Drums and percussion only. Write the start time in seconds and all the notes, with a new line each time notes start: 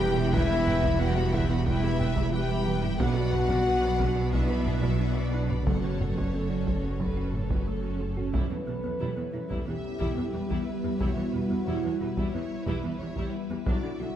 0.17 taiko low-mid
0.33 taiko
0.67 taiko low-mid
0.83 taiko
1.33 taiko
1.67 taiko
2.00 taiko low-mid
2.16 taiko
2.83 taiko low-mid
3.00 taiko
3.33 taiko low-mid
3.49 taiko
4.00 taiko
4.33 taiko
4.66 taiko low-mid
4.83 taiko
5.50 taiko low-mid
5.67 taiko
6.01 taiko low-mid
6.17 taiko
6.67 taiko
7.01 taiko
7.34 taiko low-mid
7.50 taiko
8.17 taiko low-mid
8.34 taiko
9.51 taiko
10.00 taiko
10.51 taiko
11.01 taiko
12.17 taiko
12.67 taiko
13.17 taiko
13.66 taiko